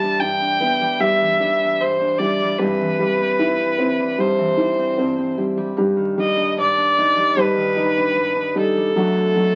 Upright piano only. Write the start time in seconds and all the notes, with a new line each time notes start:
Already playing: G3
0.21 D4
0.60 B3
1.00 G3
1.40 D4
2.19 G3
2.59 G3
2.99 G3
3.39 E4
3.78 C4
4.18 G3
4.57 E4
4.98 C4
5.38 G3
5.78 G3
6.18 G3
7.37 G3
7.76 D#4
8.55 G3
8.96 F#3
9.36 F#3